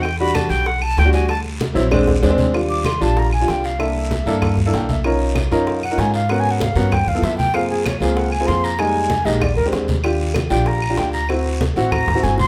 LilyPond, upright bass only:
\new Staff \with { instrumentName = "Upright bass" } { \clef bass \time 4/4 \key e \minor \tempo 4 = 192 e,4. b,,4. d,4~ | d,4. bes,,4. ees,4~ | \key c \minor ees,4. bes,,4. c,4~ | c,4. g,4. ces,4~ |
ces,4. fis,4. aes,4~ | aes,4. g,4 g,8 ges,4~ | ges,4. des,4. f,4~ | f,4. bes,,4 d,8 ees,4~ |
ees,4. bes,,4. d,4~ | d,4. a,,4 a,,8 g,,4 | }